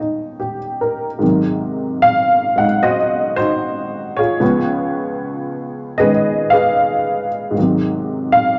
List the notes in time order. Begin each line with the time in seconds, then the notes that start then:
Already playing: D#2 D#3 G3 C#4
0.00 D#4
0.40 G4
0.81 A#4
1.19 G#2 D#3 F#3
1.23 C3
2.02 F5
2.56 G#3 D#4 F#5
2.83 F#4 C5 D#5
3.36 D#4 F#4 C5
4.17 F4 G#4 C#5
4.40 C#2 C#3 F3 B3
5.98 D#3 G#3 C#4 G#4 B4 D#5
6.50 G#4 B4 F5
7.51 G#2 D#3
7.58 C3 F#3
8.32 F5